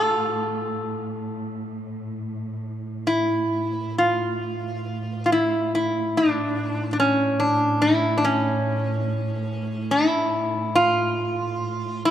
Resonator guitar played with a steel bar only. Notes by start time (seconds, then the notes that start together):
Already playing: A4
3.07 E4
3.98 F4
5.26 F4
5.32 E4
5.75 E4
6.17 D4
6.93 D4
7.00 C#4
7.40 D4
7.82 E4
8.18 D4
8.25 C#4
9.91 E4
10.75 F4
12.05 E4